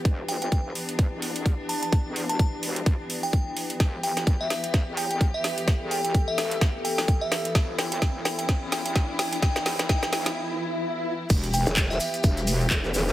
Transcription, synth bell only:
X:1
M:4/4
L:1/16
Q:"Swing 16ths" 1/4=128
K:Em
V:1 name="Synth bell"
z2 g g z8 z2 a a | z3 a z6 z g4- g | z2 g g z e3 z2 g g z e3 | z2 g g z e3 z2 g g z e3 |
z2 g g z2 g g z2 g g z2 g g | g g g g g g g g z8 | z2 g g z e6 z4 z |]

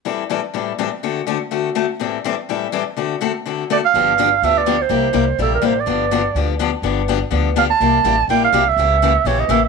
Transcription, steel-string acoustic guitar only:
X:1
M:4/4
L:1/8
Q:"Swing" 1/4=248
K:Am
V:1 name="Steel-string acoustic guitar"
[A,,E,G,CEA] z [A,,E,G,CEA] z [A,,E,G,CEA] z [A,,E,G,CEA] z | [D,A,C^FA] z [D,A,CFA] z [D,A,CFA] z [D,A,CFA] z | [A,,E,G,CEA] z [A,,E,G,CEA] z [A,,E,G,CEA] z [A,,E,G,CEA] z | [D,A,C^FA] z [D,A,CFA] z [D,A,CFA] z [D,A,CFA] z |
[D,F,B,DG] z [D,F,B,DG] z [D,F,B,DG] z [D,F,B,DG] z | [C,G,_B,EG] z [C,G,B,EG] z [C,G,B,EG] z [C,G,B,EG] z | [D,F,B,DG] z [D,F,B,DG] z [D,F,B,DG] z [D,F,B,DG] z | [D,F,B,DG] z [D,F,B,DG] z [D,F,B,DG] z [D,F,B,DG] z |
[C,G,_B,EG] z [C,G,B,EG] z [C,G,B,EG] z [C,G,B,EG] z | [^C,E,^A,^CG] z [C,E,A,CG] z [C,E,A,CG] z [C,E,A,CG] z |]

